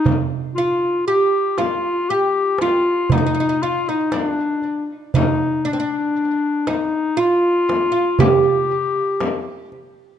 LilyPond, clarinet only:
\new Staff \with { instrumentName = "Clarinet" } { \time 10/8 \tempo 4 = 59 ees'16 r16 f'8 g'8 f'8 g'8 f'8 ees'8 f'16 ees'16 d'8. r16 | ees'8 d'4 ees'8 f'4 g'4. r8 | }